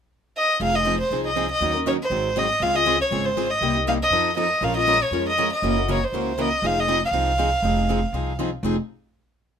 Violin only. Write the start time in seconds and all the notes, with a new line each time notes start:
0.37 D#5
0.63 F5
0.75 D#5
1.01 C5
1.27 D#5
1.52 D#5
1.87 C#5
2.02 C5
2.38 D#5
2.62 F5
2.75 D#5
3.01 C#5
3.25 C5
3.50 D#5
3.88 F5
4.02 D#5
4.38 D#5
4.64 F5
4.77 D#5
5.02 C#5
5.29 D#5
5.53 D#5
5.91 C#5
6.04 C5
6.41 D#5
6.66 F5
6.80 D#5
7.05 F5